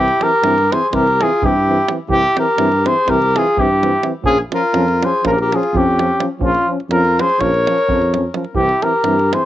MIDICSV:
0, 0, Header, 1, 7, 480
1, 0, Start_track
1, 0, Tempo, 478851
1, 2098, Time_signature, 9, 3, 24, 8
1, 9476, End_track
2, 0, Start_track
2, 0, Title_t, "Trumpet"
2, 0, Program_c, 0, 56
2, 0, Note_on_c, 0, 67, 108
2, 231, Note_on_c, 0, 70, 96
2, 246, Note_off_c, 0, 67, 0
2, 722, Note_on_c, 0, 72, 82
2, 737, Note_off_c, 0, 70, 0
2, 897, Note_off_c, 0, 72, 0
2, 897, Note_on_c, 0, 72, 62
2, 946, Note_on_c, 0, 70, 98
2, 961, Note_off_c, 0, 72, 0
2, 1226, Note_on_c, 0, 68, 86
2, 1241, Note_off_c, 0, 70, 0
2, 1456, Note_on_c, 0, 67, 92
2, 1471, Note_off_c, 0, 68, 0
2, 1955, Note_off_c, 0, 67, 0
2, 2110, Note_on_c, 0, 67, 117
2, 2366, Note_off_c, 0, 67, 0
2, 2404, Note_on_c, 0, 70, 85
2, 2870, Note_on_c, 0, 72, 80
2, 2885, Note_off_c, 0, 70, 0
2, 3103, Note_on_c, 0, 70, 90
2, 3118, Note_off_c, 0, 72, 0
2, 3383, Note_on_c, 0, 68, 90
2, 3398, Note_off_c, 0, 70, 0
2, 3603, Note_on_c, 0, 67, 96
2, 3618, Note_off_c, 0, 68, 0
2, 4107, Note_off_c, 0, 67, 0
2, 4268, Note_on_c, 0, 68, 113
2, 4392, Note_off_c, 0, 68, 0
2, 4553, Note_on_c, 0, 70, 77
2, 5056, Note_on_c, 0, 72, 73
2, 5071, Note_off_c, 0, 70, 0
2, 5262, Note_off_c, 0, 72, 0
2, 5275, Note_on_c, 0, 70, 91
2, 5299, Note_off_c, 0, 70, 0
2, 5305, Note_on_c, 0, 70, 75
2, 5384, Note_off_c, 0, 70, 0
2, 5414, Note_on_c, 0, 70, 71
2, 5557, Note_on_c, 0, 68, 77
2, 5572, Note_off_c, 0, 70, 0
2, 5777, Note_on_c, 0, 67, 92
2, 5792, Note_off_c, 0, 68, 0
2, 6273, Note_off_c, 0, 67, 0
2, 6454, Note_on_c, 0, 65, 91
2, 6697, Note_off_c, 0, 65, 0
2, 6933, Note_on_c, 0, 70, 94
2, 7216, Note_on_c, 0, 72, 84
2, 7231, Note_off_c, 0, 70, 0
2, 7416, Note_on_c, 0, 73, 91
2, 7431, Note_off_c, 0, 72, 0
2, 8368, Note_off_c, 0, 73, 0
2, 8576, Note_on_c, 0, 67, 98
2, 8847, Note_on_c, 0, 70, 82
2, 8862, Note_off_c, 0, 67, 0
2, 9359, Note_on_c, 0, 72, 81
2, 9374, Note_off_c, 0, 70, 0
2, 9476, Note_off_c, 0, 72, 0
2, 9476, End_track
3, 0, Start_track
3, 0, Title_t, "Alto saxophone"
3, 0, Program_c, 1, 65
3, 0, Note_on_c, 1, 64, 83
3, 222, Note_on_c, 1, 67, 81
3, 237, Note_off_c, 1, 64, 0
3, 723, Note_on_c, 1, 68, 79
3, 738, Note_off_c, 1, 67, 0
3, 894, Note_off_c, 1, 68, 0
3, 894, Note_on_c, 1, 68, 59
3, 943, Note_on_c, 1, 67, 82
3, 958, Note_off_c, 1, 68, 0
3, 1242, Note_on_c, 1, 65, 73
3, 1257, Note_off_c, 1, 67, 0
3, 1450, Note_on_c, 1, 64, 76
3, 1465, Note_off_c, 1, 65, 0
3, 1951, Note_off_c, 1, 64, 0
3, 2104, Note_on_c, 1, 64, 80
3, 2363, Note_off_c, 1, 64, 0
3, 2400, Note_on_c, 1, 67, 83
3, 2886, Note_on_c, 1, 68, 75
3, 2901, Note_off_c, 1, 67, 0
3, 3117, Note_on_c, 1, 67, 88
3, 3132, Note_off_c, 1, 68, 0
3, 3393, Note_on_c, 1, 65, 71
3, 3408, Note_off_c, 1, 67, 0
3, 3602, Note_on_c, 1, 64, 67
3, 3617, Note_off_c, 1, 65, 0
3, 4107, Note_off_c, 1, 64, 0
3, 4277, Note_on_c, 1, 65, 81
3, 4399, Note_off_c, 1, 65, 0
3, 4560, Note_on_c, 1, 65, 82
3, 5064, Note_on_c, 1, 68, 73
3, 5079, Note_off_c, 1, 65, 0
3, 5266, Note_off_c, 1, 68, 0
3, 5280, Note_on_c, 1, 65, 77
3, 5328, Note_off_c, 1, 65, 0
3, 5334, Note_on_c, 1, 67, 63
3, 5394, Note_off_c, 1, 67, 0
3, 5421, Note_on_c, 1, 67, 82
3, 5575, Note_on_c, 1, 65, 70
3, 5590, Note_off_c, 1, 67, 0
3, 5791, Note_on_c, 1, 61, 72
3, 5806, Note_off_c, 1, 65, 0
3, 6280, Note_off_c, 1, 61, 0
3, 6464, Note_on_c, 1, 61, 74
3, 6703, Note_off_c, 1, 61, 0
3, 6941, Note_on_c, 1, 65, 74
3, 7223, Note_on_c, 1, 68, 75
3, 7239, Note_off_c, 1, 65, 0
3, 7437, Note_on_c, 1, 70, 83
3, 7452, Note_off_c, 1, 68, 0
3, 8379, Note_off_c, 1, 70, 0
3, 8591, Note_on_c, 1, 64, 66
3, 8868, Note_on_c, 1, 67, 74
3, 8883, Note_off_c, 1, 64, 0
3, 9357, Note_on_c, 1, 68, 66
3, 9372, Note_off_c, 1, 67, 0
3, 9476, Note_off_c, 1, 68, 0
3, 9476, End_track
4, 0, Start_track
4, 0, Title_t, "Euphonium"
4, 0, Program_c, 2, 58
4, 221, Note_on_c, 2, 60, 50
4, 306, Note_off_c, 2, 60, 0
4, 441, Note_on_c, 2, 60, 65
4, 552, Note_off_c, 2, 60, 0
4, 726, Note_on_c, 2, 60, 56
4, 811, Note_off_c, 2, 60, 0
4, 944, Note_on_c, 2, 60, 64
4, 1054, Note_off_c, 2, 60, 0
4, 1212, Note_on_c, 2, 60, 60
4, 1299, Note_off_c, 2, 60, 0
4, 1445, Note_on_c, 2, 60, 67
4, 1542, Note_off_c, 2, 60, 0
4, 1685, Note_on_c, 2, 60, 64
4, 1768, Note_off_c, 2, 60, 0
4, 1901, Note_on_c, 2, 60, 55
4, 1982, Note_off_c, 2, 60, 0
4, 2101, Note_on_c, 2, 60, 72
4, 2213, Note_off_c, 2, 60, 0
4, 2374, Note_on_c, 2, 60, 63
4, 2462, Note_off_c, 2, 60, 0
4, 2587, Note_on_c, 2, 60, 69
4, 2701, Note_off_c, 2, 60, 0
4, 2857, Note_on_c, 2, 60, 63
4, 2947, Note_off_c, 2, 60, 0
4, 3082, Note_on_c, 2, 60, 68
4, 3196, Note_off_c, 2, 60, 0
4, 3363, Note_on_c, 2, 60, 64
4, 3452, Note_off_c, 2, 60, 0
4, 3585, Note_on_c, 2, 60, 68
4, 3686, Note_off_c, 2, 60, 0
4, 3842, Note_on_c, 2, 60, 72
4, 3925, Note_off_c, 2, 60, 0
4, 4052, Note_on_c, 2, 60, 58
4, 4135, Note_off_c, 2, 60, 0
4, 4259, Note_on_c, 2, 61, 77
4, 4371, Note_off_c, 2, 61, 0
4, 4541, Note_on_c, 2, 61, 57
4, 4627, Note_off_c, 2, 61, 0
4, 4751, Note_on_c, 2, 61, 69
4, 4864, Note_off_c, 2, 61, 0
4, 5038, Note_on_c, 2, 61, 66
4, 5124, Note_off_c, 2, 61, 0
4, 5257, Note_on_c, 2, 61, 64
4, 5368, Note_off_c, 2, 61, 0
4, 5544, Note_on_c, 2, 61, 63
4, 5628, Note_off_c, 2, 61, 0
4, 5780, Note_on_c, 2, 61, 66
4, 5874, Note_off_c, 2, 61, 0
4, 6015, Note_on_c, 2, 61, 62
4, 6095, Note_off_c, 2, 61, 0
4, 6231, Note_on_c, 2, 61, 58
4, 6310, Note_off_c, 2, 61, 0
4, 6430, Note_on_c, 2, 61, 68
4, 6539, Note_off_c, 2, 61, 0
4, 6718, Note_on_c, 2, 61, 59
4, 6800, Note_off_c, 2, 61, 0
4, 6926, Note_on_c, 2, 61, 65
4, 7036, Note_off_c, 2, 61, 0
4, 7203, Note_on_c, 2, 61, 56
4, 7288, Note_off_c, 2, 61, 0
4, 7421, Note_on_c, 2, 61, 51
4, 7531, Note_off_c, 2, 61, 0
4, 7710, Note_on_c, 2, 61, 54
4, 7793, Note_off_c, 2, 61, 0
4, 7921, Note_on_c, 2, 61, 52
4, 8019, Note_off_c, 2, 61, 0
4, 8154, Note_on_c, 2, 61, 55
4, 8238, Note_off_c, 2, 61, 0
4, 8359, Note_on_c, 2, 61, 46
4, 8443, Note_off_c, 2, 61, 0
4, 8568, Note_on_c, 2, 60, 57
4, 8682, Note_off_c, 2, 60, 0
4, 8853, Note_on_c, 2, 60, 52
4, 8939, Note_off_c, 2, 60, 0
4, 9070, Note_on_c, 2, 60, 64
4, 9183, Note_off_c, 2, 60, 0
4, 9352, Note_on_c, 2, 60, 53
4, 9439, Note_off_c, 2, 60, 0
4, 9476, End_track
5, 0, Start_track
5, 0, Title_t, "Trombone"
5, 0, Program_c, 3, 57
5, 219, Note_on_c, 3, 52, 52
5, 305, Note_off_c, 3, 52, 0
5, 430, Note_on_c, 3, 52, 62
5, 543, Note_off_c, 3, 52, 0
5, 710, Note_on_c, 3, 52, 50
5, 798, Note_off_c, 3, 52, 0
5, 930, Note_on_c, 3, 52, 60
5, 1043, Note_off_c, 3, 52, 0
5, 1214, Note_on_c, 3, 52, 64
5, 1300, Note_off_c, 3, 52, 0
5, 1430, Note_on_c, 3, 52, 58
5, 1531, Note_off_c, 3, 52, 0
5, 1688, Note_on_c, 3, 52, 58
5, 1770, Note_off_c, 3, 52, 0
5, 1892, Note_on_c, 3, 52, 60
5, 1975, Note_off_c, 3, 52, 0
5, 2099, Note_on_c, 3, 52, 59
5, 2211, Note_off_c, 3, 52, 0
5, 2372, Note_on_c, 3, 52, 56
5, 2460, Note_off_c, 3, 52, 0
5, 2589, Note_on_c, 3, 52, 76
5, 2702, Note_off_c, 3, 52, 0
5, 2866, Note_on_c, 3, 52, 54
5, 2955, Note_off_c, 3, 52, 0
5, 3089, Note_on_c, 3, 52, 68
5, 3202, Note_off_c, 3, 52, 0
5, 3367, Note_on_c, 3, 52, 70
5, 3455, Note_off_c, 3, 52, 0
5, 3587, Note_on_c, 3, 52, 70
5, 3688, Note_off_c, 3, 52, 0
5, 3826, Note_on_c, 3, 52, 64
5, 3912, Note_off_c, 3, 52, 0
5, 4032, Note_on_c, 3, 52, 64
5, 4119, Note_off_c, 3, 52, 0
5, 4246, Note_on_c, 3, 53, 67
5, 4361, Note_off_c, 3, 53, 0
5, 4527, Note_on_c, 3, 53, 60
5, 4616, Note_off_c, 3, 53, 0
5, 4755, Note_on_c, 3, 53, 73
5, 4868, Note_off_c, 3, 53, 0
5, 5035, Note_on_c, 3, 53, 58
5, 5122, Note_off_c, 3, 53, 0
5, 5251, Note_on_c, 3, 53, 67
5, 5364, Note_off_c, 3, 53, 0
5, 5535, Note_on_c, 3, 53, 70
5, 5621, Note_off_c, 3, 53, 0
5, 5758, Note_on_c, 3, 53, 62
5, 5856, Note_off_c, 3, 53, 0
5, 5996, Note_on_c, 3, 53, 54
5, 6079, Note_off_c, 3, 53, 0
5, 6200, Note_on_c, 3, 53, 58
5, 6285, Note_off_c, 3, 53, 0
5, 6409, Note_on_c, 3, 53, 60
5, 6522, Note_off_c, 3, 53, 0
5, 6689, Note_on_c, 3, 53, 54
5, 6777, Note_off_c, 3, 53, 0
5, 6912, Note_on_c, 3, 53, 59
5, 7025, Note_off_c, 3, 53, 0
5, 7201, Note_on_c, 3, 53, 56
5, 7286, Note_off_c, 3, 53, 0
5, 7409, Note_on_c, 3, 53, 56
5, 7521, Note_off_c, 3, 53, 0
5, 7699, Note_on_c, 3, 53, 60
5, 7784, Note_off_c, 3, 53, 0
5, 7912, Note_on_c, 3, 53, 50
5, 8011, Note_off_c, 3, 53, 0
5, 8168, Note_on_c, 3, 53, 45
5, 8249, Note_off_c, 3, 53, 0
5, 8366, Note_on_c, 3, 53, 53
5, 8449, Note_off_c, 3, 53, 0
5, 8577, Note_on_c, 3, 52, 50
5, 8689, Note_off_c, 3, 52, 0
5, 8854, Note_on_c, 3, 52, 55
5, 8940, Note_off_c, 3, 52, 0
5, 9068, Note_on_c, 3, 52, 63
5, 9181, Note_off_c, 3, 52, 0
5, 9338, Note_on_c, 3, 52, 48
5, 9428, Note_off_c, 3, 52, 0
5, 9476, End_track
6, 0, Start_track
6, 0, Title_t, "Tuba"
6, 0, Program_c, 4, 58
6, 433, Note_on_c, 4, 43, 90
6, 708, Note_off_c, 4, 43, 0
6, 930, Note_on_c, 4, 36, 83
6, 1205, Note_off_c, 4, 36, 0
6, 1432, Note_on_c, 4, 43, 86
6, 1799, Note_off_c, 4, 43, 0
6, 2090, Note_on_c, 4, 36, 83
6, 2247, Note_off_c, 4, 36, 0
6, 2594, Note_on_c, 4, 43, 97
6, 2869, Note_off_c, 4, 43, 0
6, 3093, Note_on_c, 4, 36, 86
6, 3367, Note_off_c, 4, 36, 0
6, 3594, Note_on_c, 4, 43, 85
6, 3959, Note_off_c, 4, 43, 0
6, 4254, Note_on_c, 4, 34, 86
6, 4409, Note_off_c, 4, 34, 0
6, 4752, Note_on_c, 4, 41, 90
6, 5026, Note_off_c, 4, 41, 0
6, 5258, Note_on_c, 4, 34, 84
6, 5530, Note_off_c, 4, 34, 0
6, 5748, Note_on_c, 4, 41, 89
6, 6115, Note_off_c, 4, 41, 0
6, 6418, Note_on_c, 4, 34, 77
6, 6572, Note_off_c, 4, 34, 0
6, 6911, Note_on_c, 4, 41, 92
6, 7185, Note_off_c, 4, 41, 0
6, 7408, Note_on_c, 4, 34, 83
6, 7682, Note_off_c, 4, 34, 0
6, 7906, Note_on_c, 4, 41, 84
6, 8273, Note_off_c, 4, 41, 0
6, 8574, Note_on_c, 4, 36, 87
6, 8728, Note_off_c, 4, 36, 0
6, 9063, Note_on_c, 4, 43, 86
6, 9339, Note_off_c, 4, 43, 0
6, 9476, End_track
7, 0, Start_track
7, 0, Title_t, "Davul"
7, 80, Note_on_c, 9, 37, 24
7, 180, Note_off_c, 9, 37, 0
7, 209, Note_on_c, 9, 37, 55
7, 310, Note_off_c, 9, 37, 0
7, 436, Note_on_c, 9, 37, 64
7, 536, Note_off_c, 9, 37, 0
7, 580, Note_on_c, 9, 37, 29
7, 680, Note_off_c, 9, 37, 0
7, 725, Note_on_c, 9, 37, 65
7, 825, Note_off_c, 9, 37, 0
7, 931, Note_on_c, 9, 37, 57
7, 931, Note_on_c, 9, 43, 57
7, 1032, Note_off_c, 9, 37, 0
7, 1032, Note_off_c, 9, 43, 0
7, 1075, Note_on_c, 9, 37, 23
7, 1175, Note_off_c, 9, 37, 0
7, 1209, Note_on_c, 9, 37, 64
7, 1309, Note_off_c, 9, 37, 0
7, 1428, Note_on_c, 9, 43, 92
7, 1528, Note_off_c, 9, 43, 0
7, 1889, Note_on_c, 9, 37, 73
7, 1989, Note_off_c, 9, 37, 0
7, 2098, Note_on_c, 9, 43, 80
7, 2198, Note_off_c, 9, 43, 0
7, 2234, Note_on_c, 9, 37, 28
7, 2334, Note_off_c, 9, 37, 0
7, 2373, Note_on_c, 9, 37, 66
7, 2473, Note_off_c, 9, 37, 0
7, 2589, Note_on_c, 9, 37, 72
7, 2690, Note_off_c, 9, 37, 0
7, 2726, Note_on_c, 9, 37, 29
7, 2826, Note_off_c, 9, 37, 0
7, 2866, Note_on_c, 9, 37, 66
7, 2966, Note_off_c, 9, 37, 0
7, 3085, Note_on_c, 9, 37, 64
7, 3085, Note_on_c, 9, 43, 54
7, 3185, Note_off_c, 9, 37, 0
7, 3185, Note_off_c, 9, 43, 0
7, 3228, Note_on_c, 9, 37, 27
7, 3329, Note_off_c, 9, 37, 0
7, 3367, Note_on_c, 9, 37, 65
7, 3467, Note_off_c, 9, 37, 0
7, 3478, Note_on_c, 9, 37, 24
7, 3578, Note_off_c, 9, 37, 0
7, 3583, Note_on_c, 9, 43, 82
7, 3683, Note_off_c, 9, 43, 0
7, 3840, Note_on_c, 9, 37, 58
7, 3941, Note_off_c, 9, 37, 0
7, 4043, Note_on_c, 9, 37, 65
7, 4143, Note_off_c, 9, 37, 0
7, 4248, Note_on_c, 9, 43, 82
7, 4348, Note_off_c, 9, 43, 0
7, 4392, Note_on_c, 9, 37, 25
7, 4492, Note_off_c, 9, 37, 0
7, 4530, Note_on_c, 9, 37, 62
7, 4631, Note_off_c, 9, 37, 0
7, 4752, Note_on_c, 9, 37, 67
7, 4852, Note_off_c, 9, 37, 0
7, 4894, Note_on_c, 9, 37, 27
7, 4994, Note_off_c, 9, 37, 0
7, 5037, Note_on_c, 9, 37, 67
7, 5137, Note_off_c, 9, 37, 0
7, 5259, Note_on_c, 9, 37, 65
7, 5259, Note_on_c, 9, 43, 58
7, 5359, Note_off_c, 9, 37, 0
7, 5359, Note_off_c, 9, 43, 0
7, 5397, Note_on_c, 9, 37, 25
7, 5497, Note_off_c, 9, 37, 0
7, 5537, Note_on_c, 9, 37, 57
7, 5637, Note_off_c, 9, 37, 0
7, 5645, Note_on_c, 9, 37, 25
7, 5746, Note_off_c, 9, 37, 0
7, 5758, Note_on_c, 9, 43, 87
7, 5858, Note_off_c, 9, 43, 0
7, 6007, Note_on_c, 9, 37, 62
7, 6107, Note_off_c, 9, 37, 0
7, 6218, Note_on_c, 9, 37, 66
7, 6318, Note_off_c, 9, 37, 0
7, 6424, Note_on_c, 9, 43, 86
7, 6524, Note_off_c, 9, 43, 0
7, 6562, Note_on_c, 9, 37, 25
7, 6662, Note_off_c, 9, 37, 0
7, 6817, Note_on_c, 9, 37, 21
7, 6917, Note_off_c, 9, 37, 0
7, 6925, Note_on_c, 9, 37, 62
7, 7026, Note_off_c, 9, 37, 0
7, 7065, Note_on_c, 9, 37, 23
7, 7165, Note_off_c, 9, 37, 0
7, 7212, Note_on_c, 9, 37, 67
7, 7312, Note_off_c, 9, 37, 0
7, 7314, Note_on_c, 9, 37, 22
7, 7414, Note_off_c, 9, 37, 0
7, 7423, Note_on_c, 9, 37, 57
7, 7423, Note_on_c, 9, 43, 50
7, 7524, Note_off_c, 9, 37, 0
7, 7524, Note_off_c, 9, 43, 0
7, 7561, Note_on_c, 9, 37, 22
7, 7661, Note_off_c, 9, 37, 0
7, 7692, Note_on_c, 9, 37, 63
7, 7792, Note_off_c, 9, 37, 0
7, 7802, Note_on_c, 9, 37, 23
7, 7902, Note_off_c, 9, 37, 0
7, 7907, Note_on_c, 9, 43, 82
7, 8007, Note_off_c, 9, 43, 0
7, 8037, Note_on_c, 9, 37, 20
7, 8137, Note_off_c, 9, 37, 0
7, 8159, Note_on_c, 9, 37, 60
7, 8259, Note_off_c, 9, 37, 0
7, 8363, Note_on_c, 9, 37, 59
7, 8463, Note_off_c, 9, 37, 0
7, 8466, Note_on_c, 9, 37, 21
7, 8566, Note_off_c, 9, 37, 0
7, 8567, Note_on_c, 9, 43, 75
7, 8667, Note_off_c, 9, 43, 0
7, 8712, Note_on_c, 9, 37, 22
7, 8812, Note_off_c, 9, 37, 0
7, 8845, Note_on_c, 9, 37, 56
7, 8946, Note_off_c, 9, 37, 0
7, 9062, Note_on_c, 9, 37, 64
7, 9162, Note_off_c, 9, 37, 0
7, 9216, Note_on_c, 9, 37, 25
7, 9316, Note_off_c, 9, 37, 0
7, 9350, Note_on_c, 9, 37, 71
7, 9451, Note_off_c, 9, 37, 0
7, 9476, End_track
0, 0, End_of_file